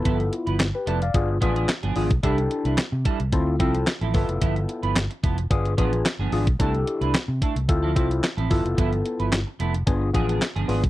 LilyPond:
<<
  \new Staff \with { instrumentName = "Tine electric piano" } { \time 4/4 \key g \mixolydian \tempo 4 = 110 << { r4 r16 <g' b'>16 <b' d''>16 <d'' f''>8 r4. r16 | r1 | r1 | r1 |
r1 | } \\ { <b e' f' a'>4 r4 <b d' f' aes'>8 <b d' f' aes'>8 r8 <b d' f' aes'>16 r16 | <d' e' g' a'>4 r4 <c' e' f' a'>8 <c' e' f' a'>8 r8 <b e' f' a'>8~ | <b e' f' a'>4 r4 <b d' f' aes'>8 <b d' f' aes'>8 r8 <b d' f' aes'>16 r16 | <d' e' g' a'>4 r4 <c' e' f' a'>8 <c' e' f' a'>8 r8 <b e' f' a'>8~ |
<b e' f' a'>4 r4 <b d' f' aes'>8 <b d' f' aes'>8 r8 <b d' f' aes'>16 r16 | } >> }
  \new Staff \with { instrumentName = "Clean electric guitar" } { \time 4/4 \key g \mixolydian <f b e' a'>16 r8 <f b e' b'>16 r8 <f b e' a'>16 r8. <f b d' aes'>16 <f b d' aes'>16 r16 <f b d' aes'>16 <f b d' aes'>16 r16 | <g d' e' a'>16 r8 <g d' e' b'>16 r8 <g d' e' a'>16 r8. <f c' e' a'>16 r8 <f c' e' a'>16 <f b e' a'>16 r16 | <f b e' a'>16 r8 <f b e' b'>16 r8 <f b e' a'>16 r8. <f b d' aes'>16 r8 <f b d' aes'>16 <f b d' aes'>16 r16 | <a d' e' a'>16 r8 <a d' e' b'>16 r8 <a d' e' a'>16 r8 <f c' e' a'>16 <f c' e' a'>16 r8 <f c' e' a'>16 <f b e' a'>16 r16 |
<f b e' a'>16 r8 <f b e' b'>16 r8 <f b e' a'>16 r8. <f b d' aes'>16 <f b d' aes'>16 r16 <f b d' aes'>16 <f b d' aes'>16 r16 | }
  \new Staff \with { instrumentName = "Fingered electric bass" } { \clef bass \time 4/4 \key g \mixolydian g,,8 r16 g,,8 r16 f,,8 g,,8 a,,8 r16 g,,16 aes,,16 b,,16 | c,8 r16 c,16 r16 c16 r16 c,16 d,8 c,8 r16 a,,16 g,,16 f,,16 | g,,8 r16 g,,8 r16 f,,8 g,,8 a,,8 r16 g,,16 aes,,16 b,,16 | c,8 r16 c,16 r16 c16 r16 c,16 d,8 c,8 r16 a,,16 g,,16 f,,16 |
g,,8 r16 g,,8 r16 f,,8 g,,8 a,,8 r16 g,,16 aes,,16 b,,16 | }
  \new DrumStaff \with { instrumentName = "Drums" } \drummode { \time 4/4 <hh bd>16 hh16 hh16 hh16 <hc hh sn>8 hh16 hh16 <hh bd>8 <hh bd>16 hh16 <hc hh sn>16 hh16 hho16 <hh bd>16 | <hh bd>16 hh16 hh16 hh16 <hc hh sn>8 <hh bd>16 hh16 <hh bd>8 <hh bd>16 hh16 <hc hh sn>16 hh16 <hho bd>16 hh16 | <hh bd>16 hh16 hh16 hh16 <hc hh sn>16 hh16 <hh bd>16 hh16 <hh bd>16 hh16 <hh bd>16 hh16 <hc hh sn>8 hho16 <hh bd>16 | <hh bd>16 hh16 hh16 hh16 <hc hh sn>8 <hh bd>16 hh16 <hh bd>8 <hh bd>16 hh16 <hc hh sn>16 hh16 <hho bd>16 hh16 |
<hh bd>16 hh16 hh16 hh16 <hc hh sn>8 hh16 hh16 <hh bd>8 <hh bd>16 hh16 <hc hh sn>16 hh16 hho16 <hh bd>16 | }
>>